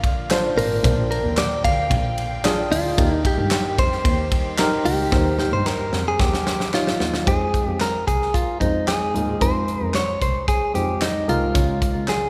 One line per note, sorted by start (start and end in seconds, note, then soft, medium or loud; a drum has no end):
0.00 0.53 A#1 medium
0.00 0.57 A#2 medium
0.00 2.95 D3 medium
0.00 2.94 F3 medium
0.00 7.23 A#3 medium
0.00 0.30 D4 medium
0.00 0.30 F4 medium
0.00 0.53 F4 medium
0.00 2.98 A#4 medium
0.00 0.61 F5 loud
0.00 kick medium
0.04 ride soft
0.30 0.73 D4 medium
0.30 0.73 F4 medium
0.30 0.73 C5 loud
0.30 snare loud
0.30 clap medium
0.30 ride medium
0.56 0.82 G#1 medium
0.56 1.33 A#2 medium
0.56 1.07 A#4 loud
0.56 2.95 G5 medium
0.56 open hi-hat medium
0.56 ride medium
0.84 1.21 A#1 loud
0.84 1.69 D4 medium
0.84 1.69 F4 medium
0.84 1.69 C5 medium
0.84 kick loud
0.84 hi-hat pedal medium
0.84 ride medium
1.11 1.38 A#4 loud
1.11 ride medium
1.24 1.61 D#2 medium
1.37 1.64 D5 loud
1.37 snare loud
1.37 clap medium
1.37 ride medium
1.64 1.89 D2 medium
1.64 2.75 F5 loud
1.64 kick medium
1.64 ride medium
1.91 2.67 A#1 medium
1.91 kick loud
1.91 ride medium
2.18 ride medium
2.44 2.87 D4 medium
2.44 2.87 F4 medium
2.44 2.87 G#4 loud
2.44 snare loud
2.44 clap medium
2.44 ride medium
2.71 2.96 D2 medium
2.71 3.16 F4 loud
2.71 open hi-hat medium
2.71 ride medium
2.97 3.36 D#2 loud
2.97 3.74 D#3 medium
2.97 7.22 D#3 medium
2.97 7.22 G3 medium
2.97 3.83 D#4 medium
2.97 3.83 G4 medium
2.97 7.23 G4 medium
2.97 3.83 A#4 medium
2.97 kick loud
2.97 hi-hat pedal medium
2.97 ride medium
3.16 3.26 D#4 loud
3.25 3.52 G4 medium
3.25 kick medium
3.25 ride medium
3.38 3.76 G2 medium
3.51 3.77 G4 medium
3.51 snare loud
3.51 clap medium
3.51 ride medium
3.78 4.04 F2 medium
3.78 4.89 C5 loud
3.78 kick medium
3.78 ride medium
3.92 snare soft
4.05 4.81 D#2 medium
4.05 kick loud
4.05 ride medium
4.32 kick medium
4.32 ride medium
4.58 5.01 D#4 medium
4.58 5.01 G4 medium
4.58 5.01 A#4 loud
4.58 snare loud
4.58 clap medium
4.58 ride medium
4.85 5.11 C#2 medium
4.85 5.35 G4 loud
4.85 open hi-hat medium
4.85 ride medium
5.12 5.50 D#2 loud
5.12 5.89 D#3 medium
5.12 5.97 D#4 medium
5.12 5.97 G4 medium
5.12 5.97 C5 medium
5.12 kick loud
5.12 snare medium
5.39 5.52 G4 medium
5.39 snare medium
5.53 5.90 G2 medium
5.53 5.67 C5 medium
5.66 6.06 A#4 medium
5.66 snare medium
5.66 clap loud
5.93 6.18 F2 medium
5.93 snare medium
6.08 6.21 G#4 medium
6.20 6.96 D#2 medium
6.20 7.00 G4 medium
6.20 kick medium
6.20 snare medium
6.33 snare medium
6.47 snare medium
6.47 clap medium
6.60 snare medium
6.73 7.16 D#4 medium
6.73 7.29 F4 medium
6.73 7.15 G4 medium
6.73 7.16 C#5 medium
6.73 snare medium
6.73 clap medium
6.87 snare medium
7.00 7.25 D#2 medium
7.00 snare medium
7.14 snare medium
7.27 7.64 F2 medium
7.27 8.12 G#3 medium
7.27 8.12 D#4 medium
7.27 8.12 F4 soft
7.27 7.68 G#4 medium
7.27 8.12 C5 medium
7.27 kick loud
7.27 closed hi-hat medium
7.54 kick medium
7.54 closed hi-hat medium
7.67 8.04 F2 medium
7.67 7.81 G4 medium
7.80 8.06 A#4 medium
7.80 snare medium
7.80 clap medium
7.80 closed hi-hat medium
8.07 8.57 C2 medium
8.07 8.35 G#4 medium
8.07 kick medium
8.07 closed hi-hat medium
8.22 snare soft
8.34 8.60 F4 medium
8.34 kick medium
8.34 closed hi-hat medium
8.60 9.11 F2 medium
8.60 9.03 G#3 medium
8.60 8.85 D#4 medium
8.60 9.03 D#4 soft
8.60 9.03 F4 soft
8.60 9.03 C5 medium
8.60 kick medium
8.60 closed hi-hat medium
8.88 9.37 G#4 medium
8.88 snare medium
8.88 clap medium
8.88 closed hi-hat medium
9.14 9.39 D#2 medium
9.14 9.35 G#3 medium
9.14 9.36 D#4 medium
9.14 9.36 F4 medium
9.14 9.36 G#4 medium
9.14 closed hi-hat medium
9.40 9.78 F2 medium
9.40 10.26 G#3 medium
9.40 10.26 D#4 medium
9.40 10.26 F4 medium
9.40 10.26 C5 medium
9.40 9.85 C5 medium
9.40 kick medium
9.40 closed hi-hat medium
9.68 closed hi-hat medium
9.82 10.19 F2 medium
9.82 9.95 A#4 medium
9.94 10.20 C#5 medium
9.94 snare medium
9.94 clap medium
9.94 closed hi-hat medium
10.21 10.71 C2 medium
10.21 10.48 C5 medium
10.21 kick medium
10.21 closed hi-hat medium
10.48 10.75 G#4 medium
10.48 kick medium
10.48 closed hi-hat medium
10.74 11.25 F2 medium
10.74 11.17 G#3 soft
10.74 11.17 D#4 soft
10.74 11.17 F4 soft
10.74 11.02 G4 medium
10.74 11.17 C5 medium
10.74 closed hi-hat medium
11.01 11.29 D#4 medium
11.01 snare medium
11.01 clap medium
11.01 closed hi-hat medium
11.28 11.54 C2 medium
11.28 11.49 G#3 medium
11.28 11.49 D#4 medium
11.28 11.50 F4 medium
11.28 12.12 F4 medium
11.28 11.50 A#4 medium
11.28 closed hi-hat medium
11.54 11.93 C#2 medium
11.54 12.29 C#3 medium
11.54 12.29 G#3 medium
11.54 12.29 C#4 medium
11.54 12.29 F4 medium
11.54 12.29 C#5 medium
11.54 kick loud
11.54 closed hi-hat medium
11.82 kick medium
11.82 closed hi-hat medium
11.95 12.29 C#2 medium
12.08 12.29 G#4 medium
12.08 snare medium
12.08 clap medium
12.08 closed hi-hat medium